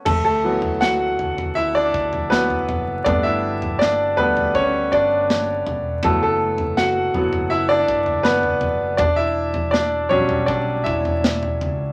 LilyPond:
<<
  \new Staff \with { instrumentName = "Grand piano" } { \time 4/4 \key d \major \tempo 4 = 81 <a a'>16 <a a'>8. <fis' fis''>4 <e' e''>16 <d' d''>8. b'8. r16 | <d' d''>16 <e' e''>8. <d' d''>8 b'8 <cis' cis''>8 <d' d''>4 r8 | <a a'>16 <a a'>8. <fis' fis''>4 <e' e''>16 <d' d''>8. <b b'>8. r16 | <d' d''>16 <e' e''>8. <d' d''>8 <cis' cis''>8 <d' d''>8 <e' e''>4 r8 | }
  \new Staff \with { instrumentName = "Grand piano" } { \clef bass \time 4/4 \key d \major r8 <e fis b>2~ <e fis b>8 <e fis b>8 r8 | <g a b>4. <g a b>8 r2 | <e fis b>8 r4 <e fis b>8 r2 | r4. <fis g d'>4. r4 | }
  \new Staff \with { instrumentName = "Fretless electric bass" } { \clef bass \time 4/4 \key d \major d,4. d,4 d,4 fis,,8 | g,,4. d,4 g,,4 e,,8 | fis,,4. fis,,4 fis,,4 fis,,8 | e,,4. b,,4 e,,4 cis,8 | }
  \new DrumStaff \with { instrumentName = "Drums" } \drummode { \time 4/4 <cymc bd tomfh>8. tomfh16 sn8 tomfh16 tomfh16 r8 bd16 tomfh16 sn16 tomfh16 tomfh8 | <bd tomfh>8. tomfh16 sn8 tomfh16 tomfh16 bd8 bd8 sn8 tomfh8 | <bd tomfh>8. tomfh16 sn8 tomfh16 tomfh16 r8 bd16 tomfh16 sn16 tomfh16 tomfh8 | <bd tomfh>8. tomfh16 sn8 tomfh16 tomfh16 bd8 bd16 tomfh16 sn16 tomfh16 tomfh8 | }
>>